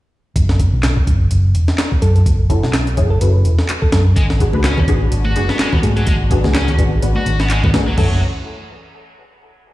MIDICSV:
0, 0, Header, 1, 7, 480
1, 0, Start_track
1, 0, Key_signature, 3, "minor"
1, 0, Tempo, 476190
1, 361, Time_signature, 4, 2, 24, 8
1, 9813, End_track
2, 0, Start_track
2, 0, Title_t, "FM electric piano"
2, 0, Program_c, 0, 5
2, 2034, Note_on_c, 0, 69, 83
2, 2124, Note_off_c, 0, 69, 0
2, 2173, Note_on_c, 0, 69, 69
2, 2241, Note_off_c, 0, 69, 0
2, 3128, Note_on_c, 0, 69, 82
2, 3199, Note_off_c, 0, 69, 0
2, 3232, Note_on_c, 0, 69, 67
2, 3323, Note_off_c, 0, 69, 0
2, 3848, Note_on_c, 0, 69, 81
2, 3919, Note_off_c, 0, 69, 0
2, 3954, Note_on_c, 0, 69, 73
2, 4045, Note_off_c, 0, 69, 0
2, 5880, Note_on_c, 0, 68, 85
2, 5967, Note_off_c, 0, 68, 0
2, 6014, Note_on_c, 0, 68, 74
2, 6082, Note_off_c, 0, 68, 0
2, 6500, Note_on_c, 0, 68, 82
2, 6565, Note_off_c, 0, 68, 0
2, 6602, Note_on_c, 0, 68, 76
2, 6688, Note_off_c, 0, 68, 0
2, 9813, End_track
3, 0, Start_track
3, 0, Title_t, "Synth stab"
3, 0, Program_c, 1, 62
3, 2517, Note_on_c, 1, 61, 88
3, 2518, Note_on_c, 1, 64, 82
3, 2518, Note_on_c, 1, 66, 84
3, 2519, Note_on_c, 1, 69, 99
3, 2634, Note_off_c, 1, 61, 0
3, 2635, Note_off_c, 1, 64, 0
3, 2635, Note_off_c, 1, 66, 0
3, 2636, Note_off_c, 1, 69, 0
3, 2653, Note_on_c, 1, 64, 68
3, 2654, Note_on_c, 1, 66, 69
3, 2655, Note_on_c, 1, 61, 73
3, 2655, Note_on_c, 1, 69, 82
3, 2747, Note_off_c, 1, 64, 0
3, 2748, Note_off_c, 1, 61, 0
3, 2748, Note_off_c, 1, 66, 0
3, 2748, Note_off_c, 1, 69, 0
3, 2994, Note_on_c, 1, 61, 87
3, 2995, Note_on_c, 1, 68, 95
3, 2996, Note_on_c, 1, 64, 76
3, 2996, Note_on_c, 1, 66, 79
3, 3118, Note_off_c, 1, 61, 0
3, 3118, Note_off_c, 1, 68, 0
3, 3119, Note_off_c, 1, 64, 0
3, 3119, Note_off_c, 1, 66, 0
3, 3239, Note_on_c, 1, 61, 72
3, 3241, Note_on_c, 1, 64, 66
3, 3241, Note_on_c, 1, 71, 77
3, 3242, Note_on_c, 1, 66, 65
3, 4188, Note_off_c, 1, 61, 0
3, 4188, Note_off_c, 1, 64, 0
3, 4188, Note_off_c, 1, 71, 0
3, 4189, Note_off_c, 1, 66, 0
3, 4441, Note_on_c, 1, 59, 75
3, 4442, Note_on_c, 1, 66, 70
3, 4442, Note_on_c, 1, 68, 84
3, 4444, Note_on_c, 1, 62, 69
3, 4556, Note_off_c, 1, 59, 0
3, 4557, Note_off_c, 1, 66, 0
3, 4557, Note_off_c, 1, 68, 0
3, 4558, Note_off_c, 1, 62, 0
3, 4575, Note_on_c, 1, 62, 70
3, 4575, Note_on_c, 1, 66, 69
3, 4576, Note_on_c, 1, 59, 73
3, 4576, Note_on_c, 1, 71, 87
3, 4736, Note_off_c, 1, 62, 0
3, 4736, Note_off_c, 1, 66, 0
3, 4737, Note_off_c, 1, 59, 0
3, 4737, Note_off_c, 1, 71, 0
3, 4922, Note_on_c, 1, 62, 76
3, 4923, Note_on_c, 1, 59, 83
3, 4923, Note_on_c, 1, 66, 76
3, 4923, Note_on_c, 1, 68, 91
3, 5041, Note_off_c, 1, 62, 0
3, 5042, Note_off_c, 1, 59, 0
3, 5042, Note_off_c, 1, 66, 0
3, 5042, Note_off_c, 1, 68, 0
3, 5402, Note_on_c, 1, 59, 72
3, 5402, Note_on_c, 1, 62, 64
3, 5402, Note_on_c, 1, 66, 65
3, 5403, Note_on_c, 1, 68, 78
3, 5521, Note_off_c, 1, 62, 0
3, 5522, Note_off_c, 1, 59, 0
3, 5522, Note_off_c, 1, 66, 0
3, 5522, Note_off_c, 1, 68, 0
3, 6360, Note_on_c, 1, 59, 94
3, 6360, Note_on_c, 1, 66, 86
3, 6360, Note_on_c, 1, 68, 106
3, 6362, Note_on_c, 1, 62, 85
3, 6476, Note_off_c, 1, 59, 0
3, 6476, Note_off_c, 1, 66, 0
3, 6476, Note_off_c, 1, 68, 0
3, 6477, Note_off_c, 1, 62, 0
3, 6491, Note_on_c, 1, 62, 70
3, 6492, Note_on_c, 1, 68, 87
3, 6493, Note_on_c, 1, 59, 76
3, 6493, Note_on_c, 1, 66, 71
3, 6586, Note_off_c, 1, 62, 0
3, 6587, Note_off_c, 1, 59, 0
3, 6587, Note_off_c, 1, 66, 0
3, 6587, Note_off_c, 1, 68, 0
3, 6839, Note_on_c, 1, 62, 80
3, 6839, Note_on_c, 1, 68, 95
3, 6840, Note_on_c, 1, 59, 88
3, 6842, Note_on_c, 1, 66, 82
3, 6960, Note_off_c, 1, 62, 0
3, 6960, Note_off_c, 1, 68, 0
3, 6961, Note_off_c, 1, 59, 0
3, 6961, Note_off_c, 1, 66, 0
3, 7080, Note_on_c, 1, 59, 73
3, 7081, Note_on_c, 1, 66, 66
3, 7082, Note_on_c, 1, 62, 68
3, 7082, Note_on_c, 1, 71, 81
3, 7780, Note_off_c, 1, 59, 0
3, 7780, Note_off_c, 1, 66, 0
3, 7780, Note_off_c, 1, 71, 0
3, 7781, Note_off_c, 1, 62, 0
3, 7802, Note_on_c, 1, 66, 81
3, 7803, Note_on_c, 1, 62, 78
3, 7804, Note_on_c, 1, 59, 83
3, 7804, Note_on_c, 1, 68, 94
3, 7921, Note_off_c, 1, 66, 0
3, 7922, Note_off_c, 1, 59, 0
3, 7922, Note_off_c, 1, 62, 0
3, 7922, Note_off_c, 1, 68, 0
3, 8042, Note_on_c, 1, 66, 74
3, 8043, Note_on_c, 1, 61, 79
3, 8043, Note_on_c, 1, 69, 88
3, 8044, Note_on_c, 1, 64, 77
3, 8226, Note_off_c, 1, 61, 0
3, 8226, Note_off_c, 1, 66, 0
3, 8226, Note_off_c, 1, 69, 0
3, 8227, Note_off_c, 1, 64, 0
3, 9813, End_track
4, 0, Start_track
4, 0, Title_t, "Distorted electric guitar"
4, 0, Program_c, 2, 30
4, 4201, Note_on_c, 2, 56, 76
4, 4269, Note_off_c, 2, 56, 0
4, 4680, Note_on_c, 2, 61, 96
4, 4809, Note_off_c, 2, 61, 0
4, 5295, Note_on_c, 2, 66, 98
4, 5522, Note_off_c, 2, 66, 0
4, 5534, Note_on_c, 2, 59, 94
4, 5629, Note_off_c, 2, 59, 0
4, 5641, Note_on_c, 2, 56, 82
4, 5755, Note_off_c, 2, 56, 0
4, 5773, Note_on_c, 2, 59, 74
4, 5828, Note_off_c, 2, 59, 0
4, 6017, Note_on_c, 2, 54, 72
4, 6116, Note_off_c, 2, 54, 0
4, 6122, Note_on_c, 2, 56, 83
4, 6190, Note_off_c, 2, 56, 0
4, 6601, Note_on_c, 2, 61, 91
4, 6730, Note_off_c, 2, 61, 0
4, 7219, Note_on_c, 2, 66, 98
4, 7444, Note_off_c, 2, 66, 0
4, 7460, Note_on_c, 2, 59, 97
4, 7552, Note_off_c, 2, 59, 0
4, 7565, Note_on_c, 2, 56, 80
4, 7678, Note_off_c, 2, 56, 0
4, 7695, Note_on_c, 2, 59, 73
4, 7749, Note_off_c, 2, 59, 0
4, 7939, Note_on_c, 2, 54, 75
4, 8031, Note_off_c, 2, 54, 0
4, 8043, Note_on_c, 2, 54, 88
4, 8265, Note_off_c, 2, 54, 0
4, 9813, End_track
5, 0, Start_track
5, 0, Title_t, "String section"
5, 0, Program_c, 3, 48
5, 4203, Note_on_c, 3, 56, 67
5, 4205, Note_on_c, 3, 54, 66
5, 4206, Note_on_c, 3, 62, 72
5, 4208, Note_on_c, 3, 59, 67
5, 4209, Note_on_c, 3, 66, 81
5, 8004, Note_off_c, 3, 56, 0
5, 8005, Note_off_c, 3, 54, 0
5, 8005, Note_off_c, 3, 62, 0
5, 8006, Note_off_c, 3, 59, 0
5, 8007, Note_off_c, 3, 66, 0
5, 8045, Note_on_c, 3, 52, 68
5, 8045, Note_on_c, 3, 54, 63
5, 8046, Note_on_c, 3, 66, 75
5, 8047, Note_on_c, 3, 57, 60
5, 8048, Note_on_c, 3, 61, 61
5, 8266, Note_off_c, 3, 52, 0
5, 8266, Note_off_c, 3, 54, 0
5, 8267, Note_off_c, 3, 57, 0
5, 8267, Note_off_c, 3, 66, 0
5, 8268, Note_off_c, 3, 61, 0
5, 9813, End_track
6, 0, Start_track
6, 0, Title_t, "Fingered electric bass"
6, 0, Program_c, 4, 33
6, 360, Note_on_c, 4, 30, 85
6, 697, Note_off_c, 4, 30, 0
6, 739, Note_on_c, 4, 35, 71
6, 1052, Note_off_c, 4, 35, 0
6, 1082, Note_on_c, 4, 30, 81
6, 1284, Note_off_c, 4, 30, 0
6, 1324, Note_on_c, 4, 30, 81
6, 1561, Note_off_c, 4, 30, 0
6, 1561, Note_on_c, 4, 28, 79
6, 1672, Note_off_c, 4, 28, 0
6, 2040, Note_on_c, 4, 42, 91
6, 2243, Note_off_c, 4, 42, 0
6, 2280, Note_on_c, 4, 30, 93
6, 2617, Note_off_c, 4, 30, 0
6, 2653, Note_on_c, 4, 35, 73
6, 2969, Note_off_c, 4, 35, 0
6, 2997, Note_on_c, 4, 30, 81
6, 3201, Note_off_c, 4, 30, 0
6, 3239, Note_on_c, 4, 30, 84
6, 3482, Note_off_c, 4, 30, 0
6, 3482, Note_on_c, 4, 28, 79
6, 3593, Note_off_c, 4, 28, 0
6, 3960, Note_on_c, 4, 42, 91
6, 4163, Note_off_c, 4, 42, 0
6, 4197, Note_on_c, 4, 32, 96
6, 4535, Note_off_c, 4, 32, 0
6, 4578, Note_on_c, 4, 37, 74
6, 4891, Note_off_c, 4, 37, 0
6, 4919, Note_on_c, 4, 32, 84
6, 5122, Note_off_c, 4, 32, 0
6, 5157, Note_on_c, 4, 32, 88
6, 5397, Note_off_c, 4, 32, 0
6, 5397, Note_on_c, 4, 30, 83
6, 5510, Note_off_c, 4, 30, 0
6, 5880, Note_on_c, 4, 44, 93
6, 6083, Note_off_c, 4, 44, 0
6, 6117, Note_on_c, 4, 32, 94
6, 6455, Note_off_c, 4, 32, 0
6, 6496, Note_on_c, 4, 37, 74
6, 6810, Note_off_c, 4, 37, 0
6, 6839, Note_on_c, 4, 32, 85
6, 7042, Note_off_c, 4, 32, 0
6, 7080, Note_on_c, 4, 32, 89
6, 7191, Note_off_c, 4, 32, 0
6, 7318, Note_on_c, 4, 32, 91
6, 7656, Note_off_c, 4, 32, 0
6, 7697, Note_on_c, 4, 44, 88
6, 7803, Note_on_c, 4, 32, 81
6, 7818, Note_off_c, 4, 44, 0
6, 8004, Note_off_c, 4, 32, 0
6, 8043, Note_on_c, 4, 30, 89
6, 8265, Note_off_c, 4, 30, 0
6, 9813, End_track
7, 0, Start_track
7, 0, Title_t, "Drums"
7, 360, Note_on_c, 9, 36, 99
7, 362, Note_on_c, 9, 42, 81
7, 461, Note_off_c, 9, 36, 0
7, 463, Note_off_c, 9, 42, 0
7, 496, Note_on_c, 9, 38, 51
7, 597, Note_off_c, 9, 38, 0
7, 600, Note_on_c, 9, 36, 85
7, 600, Note_on_c, 9, 42, 63
7, 700, Note_off_c, 9, 36, 0
7, 701, Note_off_c, 9, 42, 0
7, 838, Note_on_c, 9, 39, 95
7, 840, Note_on_c, 9, 38, 105
7, 840, Note_on_c, 9, 42, 80
7, 939, Note_off_c, 9, 39, 0
7, 941, Note_off_c, 9, 38, 0
7, 941, Note_off_c, 9, 42, 0
7, 975, Note_on_c, 9, 36, 83
7, 1076, Note_off_c, 9, 36, 0
7, 1079, Note_on_c, 9, 36, 86
7, 1082, Note_on_c, 9, 42, 61
7, 1180, Note_off_c, 9, 36, 0
7, 1182, Note_off_c, 9, 42, 0
7, 1318, Note_on_c, 9, 42, 77
7, 1419, Note_off_c, 9, 42, 0
7, 1560, Note_on_c, 9, 42, 61
7, 1661, Note_off_c, 9, 42, 0
7, 1695, Note_on_c, 9, 38, 48
7, 1796, Note_off_c, 9, 38, 0
7, 1796, Note_on_c, 9, 39, 96
7, 1798, Note_on_c, 9, 38, 108
7, 1798, Note_on_c, 9, 42, 78
7, 1897, Note_off_c, 9, 39, 0
7, 1899, Note_off_c, 9, 38, 0
7, 1899, Note_off_c, 9, 42, 0
7, 1934, Note_on_c, 9, 36, 87
7, 2035, Note_off_c, 9, 36, 0
7, 2037, Note_on_c, 9, 42, 64
7, 2137, Note_off_c, 9, 42, 0
7, 2174, Note_on_c, 9, 42, 39
7, 2275, Note_off_c, 9, 42, 0
7, 2279, Note_on_c, 9, 36, 104
7, 2280, Note_on_c, 9, 42, 83
7, 2379, Note_off_c, 9, 36, 0
7, 2381, Note_off_c, 9, 42, 0
7, 2518, Note_on_c, 9, 36, 87
7, 2520, Note_on_c, 9, 42, 62
7, 2619, Note_off_c, 9, 36, 0
7, 2621, Note_off_c, 9, 42, 0
7, 2656, Note_on_c, 9, 38, 40
7, 2755, Note_on_c, 9, 39, 98
7, 2756, Note_off_c, 9, 38, 0
7, 2757, Note_on_c, 9, 38, 104
7, 2757, Note_on_c, 9, 42, 84
7, 2856, Note_off_c, 9, 39, 0
7, 2858, Note_off_c, 9, 38, 0
7, 2858, Note_off_c, 9, 42, 0
7, 2894, Note_on_c, 9, 42, 41
7, 2995, Note_off_c, 9, 42, 0
7, 2996, Note_on_c, 9, 42, 62
7, 2997, Note_on_c, 9, 36, 86
7, 3097, Note_off_c, 9, 42, 0
7, 3098, Note_off_c, 9, 36, 0
7, 3237, Note_on_c, 9, 42, 82
7, 3337, Note_off_c, 9, 42, 0
7, 3477, Note_on_c, 9, 42, 61
7, 3578, Note_off_c, 9, 42, 0
7, 3614, Note_on_c, 9, 38, 52
7, 3715, Note_off_c, 9, 38, 0
7, 3716, Note_on_c, 9, 39, 105
7, 3717, Note_on_c, 9, 42, 79
7, 3817, Note_off_c, 9, 39, 0
7, 3818, Note_off_c, 9, 42, 0
7, 3853, Note_on_c, 9, 36, 86
7, 3954, Note_off_c, 9, 36, 0
7, 3955, Note_on_c, 9, 38, 107
7, 3955, Note_on_c, 9, 42, 64
7, 4056, Note_off_c, 9, 38, 0
7, 4056, Note_off_c, 9, 42, 0
7, 4197, Note_on_c, 9, 36, 109
7, 4197, Note_on_c, 9, 42, 85
7, 4298, Note_off_c, 9, 36, 0
7, 4298, Note_off_c, 9, 42, 0
7, 4335, Note_on_c, 9, 38, 52
7, 4436, Note_off_c, 9, 38, 0
7, 4438, Note_on_c, 9, 36, 91
7, 4439, Note_on_c, 9, 42, 65
7, 4539, Note_off_c, 9, 36, 0
7, 4540, Note_off_c, 9, 42, 0
7, 4569, Note_on_c, 9, 63, 92
7, 4669, Note_off_c, 9, 63, 0
7, 4676, Note_on_c, 9, 39, 99
7, 4677, Note_on_c, 9, 38, 108
7, 4677, Note_on_c, 9, 42, 84
7, 4777, Note_off_c, 9, 39, 0
7, 4778, Note_off_c, 9, 38, 0
7, 4778, Note_off_c, 9, 42, 0
7, 4814, Note_on_c, 9, 36, 92
7, 4815, Note_on_c, 9, 64, 77
7, 4915, Note_off_c, 9, 36, 0
7, 4916, Note_off_c, 9, 64, 0
7, 4918, Note_on_c, 9, 36, 90
7, 4918, Note_on_c, 9, 42, 64
7, 5019, Note_off_c, 9, 36, 0
7, 5019, Note_off_c, 9, 42, 0
7, 5159, Note_on_c, 9, 42, 82
7, 5259, Note_off_c, 9, 42, 0
7, 5287, Note_on_c, 9, 63, 61
7, 5388, Note_off_c, 9, 63, 0
7, 5400, Note_on_c, 9, 42, 64
7, 5501, Note_off_c, 9, 42, 0
7, 5535, Note_on_c, 9, 38, 50
7, 5636, Note_off_c, 9, 38, 0
7, 5637, Note_on_c, 9, 38, 108
7, 5637, Note_on_c, 9, 42, 79
7, 5638, Note_on_c, 9, 39, 105
7, 5738, Note_off_c, 9, 38, 0
7, 5738, Note_off_c, 9, 39, 0
7, 5738, Note_off_c, 9, 42, 0
7, 5773, Note_on_c, 9, 64, 83
7, 5774, Note_on_c, 9, 36, 87
7, 5874, Note_off_c, 9, 64, 0
7, 5875, Note_off_c, 9, 36, 0
7, 5879, Note_on_c, 9, 42, 64
7, 5879, Note_on_c, 9, 63, 95
7, 5980, Note_off_c, 9, 42, 0
7, 5980, Note_off_c, 9, 63, 0
7, 6015, Note_on_c, 9, 42, 41
7, 6115, Note_off_c, 9, 42, 0
7, 6115, Note_on_c, 9, 42, 88
7, 6117, Note_on_c, 9, 36, 106
7, 6216, Note_off_c, 9, 42, 0
7, 6218, Note_off_c, 9, 36, 0
7, 6358, Note_on_c, 9, 36, 92
7, 6358, Note_on_c, 9, 42, 64
7, 6459, Note_off_c, 9, 36, 0
7, 6459, Note_off_c, 9, 42, 0
7, 6492, Note_on_c, 9, 63, 86
7, 6495, Note_on_c, 9, 38, 42
7, 6592, Note_off_c, 9, 63, 0
7, 6596, Note_off_c, 9, 38, 0
7, 6598, Note_on_c, 9, 38, 110
7, 6598, Note_on_c, 9, 42, 84
7, 6599, Note_on_c, 9, 39, 104
7, 6699, Note_off_c, 9, 38, 0
7, 6699, Note_off_c, 9, 42, 0
7, 6700, Note_off_c, 9, 39, 0
7, 6734, Note_on_c, 9, 42, 42
7, 6736, Note_on_c, 9, 64, 77
7, 6835, Note_off_c, 9, 42, 0
7, 6836, Note_off_c, 9, 64, 0
7, 6839, Note_on_c, 9, 36, 94
7, 6840, Note_on_c, 9, 42, 68
7, 6940, Note_off_c, 9, 36, 0
7, 6941, Note_off_c, 9, 42, 0
7, 7081, Note_on_c, 9, 42, 83
7, 7181, Note_off_c, 9, 42, 0
7, 7207, Note_on_c, 9, 63, 70
7, 7308, Note_off_c, 9, 63, 0
7, 7320, Note_on_c, 9, 42, 66
7, 7421, Note_off_c, 9, 42, 0
7, 7456, Note_on_c, 9, 38, 54
7, 7557, Note_off_c, 9, 38, 0
7, 7557, Note_on_c, 9, 39, 105
7, 7558, Note_on_c, 9, 42, 84
7, 7658, Note_off_c, 9, 39, 0
7, 7659, Note_off_c, 9, 42, 0
7, 7696, Note_on_c, 9, 36, 89
7, 7699, Note_on_c, 9, 64, 90
7, 7797, Note_off_c, 9, 36, 0
7, 7797, Note_on_c, 9, 63, 88
7, 7800, Note_off_c, 9, 64, 0
7, 7801, Note_on_c, 9, 38, 114
7, 7801, Note_on_c, 9, 42, 69
7, 7898, Note_off_c, 9, 63, 0
7, 7902, Note_off_c, 9, 38, 0
7, 7902, Note_off_c, 9, 42, 0
7, 8041, Note_on_c, 9, 36, 103
7, 8041, Note_on_c, 9, 43, 104
7, 8041, Note_on_c, 9, 49, 89
7, 8142, Note_off_c, 9, 36, 0
7, 8142, Note_off_c, 9, 43, 0
7, 8142, Note_off_c, 9, 49, 0
7, 9813, End_track
0, 0, End_of_file